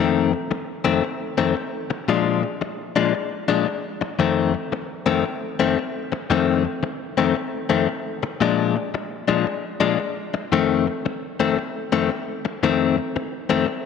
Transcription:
0.00 0.33 F2 medium
0.00 0.32 D#3 medium
0.00 0.32 A3 medium
0.00 0.32 C4 medium
0.33 muted clean electric guitar stroke soft
0.51 muted clean electric guitar stroke soft
0.85 1.02 F2 medium
0.85 1.03 D#3 medium
0.85 1.03 A3 medium
0.85 1.03 C4 medium
1.03 muted clean electric guitar stroke soft
1.38 1.55 F2 medium
1.38 1.55 D#3 medium
1.38 1.56 A3 medium
1.38 1.56 C4 medium
1.56 muted clean electric guitar stroke soft
1.90 muted clean electric guitar stroke soft
2.08 2.43 A#2 medium
2.08 2.43 F3 medium
2.08 2.42 G#3 medium
2.08 2.42 D4 medium
2.43 muted clean electric guitar stroke soft
2.61 muted clean electric guitar stroke soft
2.96 3.13 A#2 medium
2.96 3.13 F3 medium
2.96 3.13 G#3 medium
2.96 3.14 D4 medium
3.14 muted clean electric guitar stroke soft
3.48 3.67 A#2 medium
3.48 3.67 F3 medium
3.48 3.67 G#3 medium
3.48 3.67 D4 medium
3.68 muted clean electric guitar stroke soft
4.01 muted clean electric guitar stroke soft
4.19 4.54 F2 medium
4.19 4.54 D#3 medium
4.19 4.53 A3 medium
4.19 4.53 C4 medium
4.54 muted clean electric guitar stroke medium
4.72 muted clean electric guitar stroke soft
5.06 5.24 F2 medium
5.06 5.24 D#3 medium
5.06 5.24 A3 medium
5.06 5.25 C4 medium
5.25 muted clean electric guitar stroke soft
5.60 5.77 F2 medium
5.60 5.78 D#3 medium
5.60 5.78 A3 medium
5.60 5.78 C4 medium
5.78 muted clean electric guitar stroke soft
6.12 muted clean electric guitar stroke soft
6.30 6.65 F2 medium
6.30 6.64 D#3 medium
6.30 6.64 A3 medium
6.30 6.63 C4 medium
6.65 muted clean electric guitar stroke soft
6.83 muted clean electric guitar stroke soft
7.18 7.34 F2 medium
7.18 7.35 D#3 medium
7.18 7.35 A3 medium
7.18 7.35 C4 medium
7.35 muted clean electric guitar stroke soft
7.70 7.87 F2 medium
7.70 7.88 D#3 medium
7.70 7.88 A3 medium
7.70 7.88 C4 medium
7.88 muted clean electric guitar stroke soft
8.23 muted clean electric guitar stroke soft
8.41 8.76 A#2 medium
8.41 8.76 F3 medium
8.41 8.75 G#3 medium
8.41 8.75 D4 medium
8.76 muted clean electric guitar stroke soft
8.94 muted clean electric guitar stroke soft
9.28 9.46 A#2 medium
9.28 9.46 F3 medium
9.28 9.46 G#3 medium
9.28 9.46 D4 medium
9.47 muted clean electric guitar stroke soft
9.80 9.98 A#2 medium
9.80 9.98 F3 medium
9.80 9.99 G#3 medium
9.80 9.99 D4 medium
9.99 muted clean electric guitar stroke soft
10.34 muted clean electric guitar stroke medium
10.52 10.87 F2 medium
10.52 10.87 D#3 medium
10.52 10.86 A3 medium
10.52 10.86 C4 medium
10.87 muted clean electric guitar stroke soft
11.06 muted clean electric guitar stroke soft
11.40 11.57 F2 medium
11.40 11.57 D#3 medium
11.40 11.58 A3 medium
11.40 11.58 C4 medium
11.58 muted clean electric guitar stroke soft
11.92 12.10 F2 medium
11.92 12.10 D#3 medium
11.92 12.10 A3 medium
11.92 12.11 C4 medium
12.11 muted clean electric guitar stroke soft
12.45 muted clean electric guitar stroke medium
12.63 12.98 F2 medium
12.63 12.97 D#3 medium
12.63 12.97 A3 medium
12.63 12.96 C4 loud
12.97 muted clean electric guitar stroke soft
13.16 muted clean electric guitar stroke soft
13.50 13.66 F2 medium
13.50 13.67 D#3 medium
13.50 13.67 A3 medium
13.50 13.67 C4 medium
13.67 muted clean electric guitar stroke medium

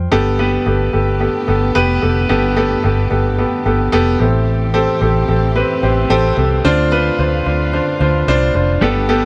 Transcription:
0.00 0.14 G3 soft
0.00 0.14 C4 soft
0.00 0.14 F4 medium
0.00 0.14 C5 medium
0.00 0.14 G5 medium
0.12 0.57 G1 medium
0.12 0.89 G2 medium
0.12 0.32 B3 loud
0.12 0.32 G4 medium
0.12 0.32 A4 loud
0.39 0.59 B3 medium
0.39 0.59 G4 medium
0.39 0.59 B4 medium
0.66 0.89 G1 medium
0.66 0.87 B3 medium
0.66 0.87 G4 medium
0.66 0.87 A4 medium
0.93 1.27 G1 medium
0.93 1.13 B3 medium
0.93 1.14 G4 medium
0.93 1.14 A4 medium
1.20 1.41 B3 medium
1.20 1.41 G4 medium
1.20 1.41 A4 medium
1.48 1.70 G1 medium
1.48 1.68 B3 medium
1.48 1.68 G4 medium
1.48 1.68 A4 medium
1.75 1.98 F1 medium
1.75 1.95 B3 medium
1.75 1.95 G4 loud
1.75 1.95 B4 loud
2.02 2.25 F1 medium
2.02 2.22 B3 medium
2.02 2.22 G4 medium
2.02 2.22 A4 medium
2.29 2.74 G1 medium
2.29 3.07 G2 medium
2.29 2.50 B3 loud
2.29 2.50 G4 medium
2.29 2.50 A4 loud
2.57 2.77 B3 medium
2.57 2.77 G4 medium
2.57 2.77 A4 loud
2.84 3.07 G1 medium
2.84 3.04 B3 medium
2.84 3.04 G4 medium
2.84 3.04 A4 medium
3.10 3.45 G1 medium
3.10 3.31 B3 medium
3.10 3.31 G4 medium
3.10 3.31 A4 medium
3.38 3.59 B3 medium
3.38 3.59 G4 medium
3.38 3.59 A4 medium
3.66 3.88 G1 medium
3.66 3.86 B3 medium
3.66 3.86 G4 medium
3.66 3.86 A4 medium
3.92 4.15 F1 medium
3.92 4.13 B3 loud
3.92 4.13 G4 loud
3.92 4.13 A4 loud
4.19 4.87 A1 medium
4.19 4.97 A2 medium
4.19 6.62 E3 medium
4.19 8.78 A3 medium
4.19 4.63 C4 medium
4.19 8.78 C4 medium
4.19 4.63 G4 medium
4.19 6.62 G4 medium
4.19 4.63 A4 medium
4.74 4.94 C4 loud
4.74 4.94 G4 medium
4.74 4.94 A4 loud
5.01 5.24 A1 medium
5.01 5.22 C4 medium
5.01 5.22 G4 medium
5.01 5.22 A4 medium
5.28 5.62 A1 medium
5.28 5.49 C4 medium
5.28 5.49 G4 medium
5.28 5.49 A4 medium
5.56 5.76 C4 medium
5.56 5.76 G4 medium
5.56 5.76 B4 medium
5.83 6.05 A1 medium
5.83 6.03 C4 medium
5.83 6.03 G4 medium
5.83 6.03 C5 medium
6.10 6.32 A1 medium
6.10 6.30 C4 loud
6.10 6.30 G4 loud
6.10 6.30 A4 loud
6.37 6.60 C2 medium
6.37 6.57 C4 medium
6.37 6.57 G4 medium
6.37 6.58 A4 medium
6.65 7.09 D2 medium
6.65 7.42 D3 medium
6.65 9.25 D3 medium
6.65 6.85 D4 loud
6.65 6.85 F4 loud
6.65 8.80 F4 medium
6.65 6.85 C5 loud
6.92 7.12 D4 medium
6.92 7.12 F4 medium
6.92 7.12 B4 loud
7.19 7.41 D2 medium
7.19 7.39 D4 medium
7.19 7.39 F4 medium
7.19 7.39 C5 medium
7.46 7.79 D2 medium
7.46 7.66 D4 medium
7.46 7.66 F4 medium
7.46 7.66 C5 medium
7.73 7.93 D4 medium
7.73 7.93 F4 medium
7.73 7.93 C5 medium
8.00 8.23 D2 medium
8.00 8.21 D4 medium
8.00 8.21 F4 medium
8.00 8.21 C5 medium
8.28 8.50 C2 medium
8.28 8.48 D4 loud
8.28 8.48 F4 medium
8.28 8.48 C5 loud
8.55 8.77 F1 medium
8.55 8.75 D4 medium
8.55 8.75 F4 medium
8.55 8.75 C5 medium
8.81 9.25 G1 medium
8.81 9.25 G2 medium
8.81 9.09 G3 medium
8.81 9.25 A3 medium
8.81 9.25 B3 medium
8.81 9.02 B3 loud
8.81 9.09 B3 medium
8.81 9.09 D4 medium
8.81 9.25 G4 medium
8.81 9.02 G4 medium
8.81 9.09 G4 medium
8.81 9.02 A4 loud
8.81 9.07 A4 loud
9.09 9.25 B3 loud
9.09 9.25 D4 soft
9.09 9.25 G4 medium
9.09 9.25 G4 soft
9.09 9.25 A4 soft
9.09 9.25 A4 loud

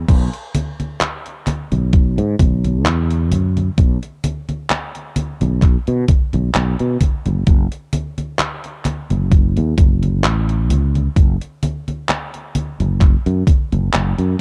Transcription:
0.09 0.28 B1 loud
0.09 kick loud
0.09 closed hi-hat medium
0.09 crash loud
0.09 high conga soft
0.34 closed hi-hat soft
0.55 closed hi-hat loud
0.55 high conga medium
0.80 closed hi-hat soft
0.80 high conga soft
1.01 clap loud
1.01 closed hi-hat medium
1.01 high conga soft
1.26 closed hi-hat soft
1.47 clap soft
1.47 closed hi-hat medium
1.47 high conga medium
1.72 2.20 B1 medium
1.72 closed hi-hat soft
1.72 high conga soft
1.93 kick loud
1.93 closed hi-hat medium
1.93 high conga soft
2.18 2.34 G#2 loud
2.18 closed hi-hat soft
2.39 2.86 B1 medium
2.39 kick loud
2.39 closed hi-hat medium
2.39 high conga medium
2.64 closed hi-hat soft
2.64 high conga soft
2.86 3.32 E2 loud
2.86 clap loud
2.86 closed hi-hat medium
2.86 high conga soft
3.10 closed hi-hat soft
3.32 3.68 F#2 loud
3.32 closed hi-hat loud
3.32 high conga medium
3.57 closed hi-hat soft
3.57 high conga soft
3.78 3.97 B1 loud
3.78 kick loud
3.78 closed hi-hat medium
3.78 high conga soft
4.03 closed hi-hat soft
4.24 closed hi-hat loud
4.24 high conga medium
4.49 closed hi-hat soft
4.49 high conga soft
4.70 clap loud
4.70 closed hi-hat medium
4.70 high conga soft
4.95 closed hi-hat soft
5.16 closed hi-hat loud
5.16 high conga medium
5.41 5.76 B1 loud
5.41 closed hi-hat soft
5.41 high conga soft
5.62 kick loud
5.62 clap soft
5.62 closed hi-hat medium
5.62 high conga soft
5.87 6.04 B2 medium
5.87 closed hi-hat soft
6.08 kick loud
6.08 closed hi-hat loud
6.08 high conga medium
6.33 6.50 B1 loud
6.33 closed hi-hat soft
6.33 high conga soft
6.55 6.74 B1 loud
6.55 clap loud
6.55 closed hi-hat medium
6.55 high conga soft
6.79 6.96 B2 medium
6.79 closed hi-hat soft
7.01 kick medium
7.01 closed hi-hat loud
7.01 high conga medium
7.26 7.42 F#1 medium
7.26 closed hi-hat soft
7.26 high conga soft
7.47 7.66 F#1 loud
7.47 kick loud
7.47 closed hi-hat medium
7.47 high conga soft
7.72 closed hi-hat soft
7.93 closed hi-hat loud
7.93 high conga medium
8.18 closed hi-hat soft
8.18 high conga soft
8.39 clap loud
8.39 closed hi-hat medium
8.39 high conga soft
8.64 closed hi-hat soft
8.85 clap soft
8.85 closed hi-hat medium
8.85 high conga medium
9.10 9.59 F#1 medium
9.10 closed hi-hat soft
9.10 high conga soft
9.32 kick loud
9.32 closed hi-hat medium
9.32 high conga soft
9.57 9.73 D#2 loud
9.57 closed hi-hat soft
9.78 10.24 F#1 medium
9.78 kick loud
9.78 closed hi-hat loud
9.78 high conga medium
10.03 closed hi-hat soft
10.03 high conga soft
10.24 10.70 A1 medium
10.24 clap loud
10.24 closed hi-hat medium
10.24 high conga soft
10.49 closed hi-hat soft
10.70 11.06 C#2 loud
10.70 closed hi-hat loud
10.70 high conga medium
10.95 closed hi-hat soft
10.95 high conga soft
11.16 11.35 F#1 loud
11.16 kick loud
11.16 closed hi-hat medium
11.16 high conga soft
11.41 closed hi-hat soft
11.63 closed hi-hat medium
11.63 high conga medium
11.88 closed hi-hat soft
11.88 high conga soft
12.09 clap loud
12.09 closed hi-hat medium
12.09 high conga soft
12.34 closed hi-hat soft
12.55 closed hi-hat medium
12.55 high conga medium
12.80 13.14 F#1 loud
12.80 closed hi-hat soft
12.80 high conga soft
13.01 kick loud
13.01 clap soft
13.01 closed hi-hat medium
13.01 high conga soft
13.26 13.42 F#2 medium
13.26 closed hi-hat soft
13.47 kick loud
13.47 closed hi-hat medium
13.47 high conga medium
13.72 13.89 F#1 loud
13.72 closed hi-hat soft
13.72 high conga soft
13.93 14.13 F#1 loud
13.93 clap loud
13.93 closed hi-hat medium
13.93 high conga soft
14.18 14.35 F#2 medium
14.18 closed hi-hat soft

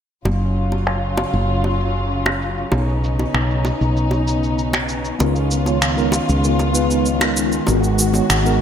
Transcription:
0.25 1.24 F#1 medium
0.25 5.16 C#3 medium
0.25 2.70 F#3 medium
0.25 7.64 C#4 medium
0.25 2.70 F4 medium
0.25 high bongo medium
0.57 shaker medium
0.72 high bongo medium
0.87 finger snap medium
1.03 shaker soft
1.17 high bongo medium
1.33 2.63 F#1 medium
1.33 shaker soft
1.49 shaker soft
1.64 high bongo medium
1.80 shaker medium
1.96 shaker soft
2.11 shaker soft
2.26 finger snap medium
2.26 high bongo medium
2.42 shaker medium
2.57 shaker soft
2.72 3.25 B1 medium
2.72 8.61 B3 medium
2.72 5.18 D#4 medium
2.72 high bongo medium
2.72 shaker soft
2.89 shaker soft
3.04 shaker medium
3.19 high bongo medium
3.19 shaker soft
3.34 3.71 B1 medium
3.34 finger snap medium
3.34 shaker soft
3.50 shaker soft
3.65 high bongo medium
3.65 shaker medium
3.81 5.11 B1 medium
3.81 shaker soft
3.97 shaker soft
4.11 high bongo medium
4.11 shaker soft
4.28 shaker medium
4.43 shaker soft
4.59 shaker soft
4.73 finger snap medium
4.73 high bongo medium
4.73 shaker soft
4.89 shaker medium
5.05 shaker soft
5.19 6.19 C#2 medium
5.19 8.61 D#3 medium
5.19 5.62 G#3 medium
5.19 5.62 B3 medium
5.19 5.63 D#4 medium
5.19 5.63 F4 medium
5.19 7.65 F4 medium
5.19 5.63 A#4 medium
5.19 high bongo medium
5.19 shaker soft
5.36 shaker soft
5.51 shaker medium
5.65 5.77 G#3 medium
5.65 5.77 B3 medium
5.65 5.77 D#4 medium
5.65 5.78 F4 medium
5.65 5.78 C#5 medium
5.65 high bongo medium
5.65 shaker soft
5.82 finger snap medium
5.82 shaker soft
5.95 6.14 G#3 medium
5.95 6.15 B3 medium
5.95 6.15 D#4 medium
5.95 6.15 F4 medium
5.95 6.16 A#4 loud
5.95 shaker soft
6.12 high bongo medium
6.12 shaker medium
6.29 7.58 C#2 medium
6.29 shaker soft
6.41 6.69 G#3 medium
6.41 6.70 B3 medium
6.41 6.70 D#4 medium
6.41 6.71 F4 medium
6.41 6.71 A#4 medium
6.41 shaker soft
6.59 high bongo medium
6.59 shaker soft
6.72 7.16 G#3 medium
6.72 7.16 B3 medium
6.72 7.17 D#4 medium
6.72 7.17 F4 medium
6.72 7.17 B4 medium
6.72 shaker medium
6.91 shaker soft
7.06 shaker soft
7.19 7.62 G#3 medium
7.19 7.63 B3 medium
7.19 7.63 D#4 medium
7.19 7.63 F4 medium
7.19 7.64 A#4 medium
7.19 finger snap medium
7.19 high bongo loud
7.19 shaker soft
7.37 shaker medium
7.52 shaker soft
7.65 8.20 G#1 medium
7.65 8.09 G#3 medium
7.65 8.61 G#3 medium
7.65 8.10 B3 medium
7.65 8.10 D#4 medium
7.65 8.10 F#4 medium
7.65 8.61 F#4 medium
7.65 8.10 A#4 medium
7.65 high bongo medium
7.65 shaker soft
7.84 shaker soft
7.99 shaker medium
8.12 8.24 G#3 medium
8.12 8.24 B3 medium
8.12 8.25 D#4 medium
8.12 8.25 F#4 medium
8.12 8.25 C#5 medium
8.12 high bongo medium
8.12 shaker soft
8.30 8.61 G#1 medium
8.30 finger snap medium
8.30 shaker soft
8.43 8.61 G#3 medium
8.43 8.61 B3 medium
8.43 8.61 D#4 medium
8.43 8.61 F#4 medium
8.43 8.61 A#4 loud
8.43 shaker soft

